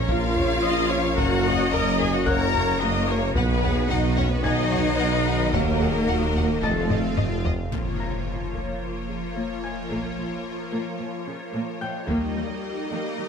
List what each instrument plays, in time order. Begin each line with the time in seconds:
Already playing: sub bass A#1, analog synth pad F3 A#3 A#4 C#5, french horn section A#3 C#4, grand piano F6
0.08 tuba A#1, double bass section A#1, cello section F4, viola section A#4, violin section C#5 F5, taiko
0.35 violin section C#5, viola section C#5, taiko low
0.62 tuba A#1, double bass section A#1, violin section C#5, viola section D#5, grand piano D#6
0.90 violin section C#5, viola section C#5
1.17 tuba F#1, double bass section F#1, sub bass F#1, analog synth pad C#3 F#4, cello section F#4, violin section A#4 F#5, viola section A#4, taiko
1.44 violin section A#4, viola section D#5, taiko low
1.71 tuba F#1, double bass section F#1, violin section A#4 A#5, cello section A#4, taiko low
1.99 cello section G#4, violin section A#4 G#5, taiko low
2.13 cello section F#4, violin section F#5
2.26 double bass section F#1, tuba F#1, violin section A#4 A#5, cello section A#4, viola section C#5, grand piano F#5 F#6, taiko
2.53 violin section A#4, taiko low
2.80 double bass section F#1, tuba F#1, cello section A#3, violin section A#4, viola section D#5
3.08 violin section A#4, viola section C#5
3.35 sub bass B1, double bass section B1, tuba B1, analog synth pad D#3 B3 B4, french horn section F#3 D#4, cello section B3, viola section B4, violin section B4 F#5, taiko
3.62 viola section G#4, violin section F#5, taiko low
3.90 double bass section B1, tuba B1, cello section D#4, viola section F#4, violin section D#5 F#5, taiko low
4.17 cello section C#4, violin section C#5 F#5, taiko low
4.31 cello section B3, violin section B4
4.44 double bass section B1, tuba B1, cello section D#4, violin section D#5 F#5, viola section D#5, grand piano G#5 G#6, taiko
4.71 viola section C#5, violin section F#5, taiko low
4.99 double bass section B1, tuba B1, viola section B4, violin section F#5
5.26 violin section F#5
5.53 sub bass D#1, double bass section D#2, tuba D#2, cello section A#3, analog synth pad A#3 D#5, violin section A#4 F#5, viola section A#4, taiko
5.81 viola section G#4, violin section F#5, taiko low
6.08 tuba D#2, double bass section D#2, viola section F#4, violin section F#5, taiko low
6.36 violin section F#5, taiko low
6.62 tuba F1, sub bass F1, double bass section F2, french horn section F3, cello section A3, analog synth pad C4 F4 F5, violin section A4 D#5, viola section A4, grand piano A5 A6, taiko
6.90 violin section D#5, taiko low-mid
7.17 tuba F1, double bass section F2, violin section D#5, taiko low-mid
7.44 violin section D#5, taiko low
7.72 double bass section A#1, cello section A#2, analog synth pad F3 A#3 F4 C#5, viola section A#3 F4, violin section A#4 C#5, taiko, impact
7.99 cello section A#2, viola section F3, grand piano A#5 A#6
8.54 cello section A#2, viola section A#3, taiko
8.81 cello section A#2, viola section F3
9.09 cello section A#2, viola section C#3
9.36 cello section A#2, viola section A#3
9.63 cello section A#2, viola section F3, grand piano G#5 G#6
9.90 double bass section A#1, cello section A#2, viola section A#3
10.18 cello section A#2, viola section F3
10.72 cello section A#2, viola section A#3
10.99 cello section A#2, viola section F3
11.26 cello section A#2, viola section C#3
11.54 cello section A#2, viola section A#3
11.81 cello section A#2, viola section F3, grand piano G5 G6
12.08 double bass section D#2, cello section D#3, analog synth pad G3 A#3 D#4 D#5, viola section A#3 G4, violin section A#4 D#5, taiko
12.36 cello section D#3, viola section G3
12.91 cello section D#3, viola section A#3
13.18 cello section D#3, viola section G3